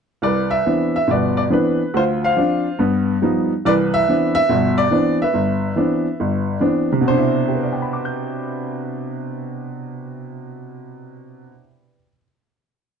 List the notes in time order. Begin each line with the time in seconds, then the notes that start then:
0.22 C2 B4 D5
0.51 E5
0.66 E3 B3 C4 D4
0.96 E5
1.08 G1 B2 D5
1.13 B4
1.37 D5
1.50 E3 B3 C4 D4 B4
1.94 D2 F4 C5
2.24 C5 F5
2.37 F3 C4 D4
2.79 G2 B3
3.22 F3 G3 B3 D#4
3.65 C2 E3 B4 D5
3.94 E5
4.09 E3 B3 C4 D4
4.35 E5
4.49 G1 B2
4.78 D5
4.91 E3 B3 C4 D4
5.22 B4 E5
5.34 G1
5.76 E3 B3 C4 D4
6.20 G1
6.60 E3 B3 C4 D4
6.92 C3
7.01 B2
7.08 D4 C5
7.17 E4
7.48 G4
7.55 B4
7.63 D5
7.73 G5
7.82 B5
7.93 D6
8.05 G6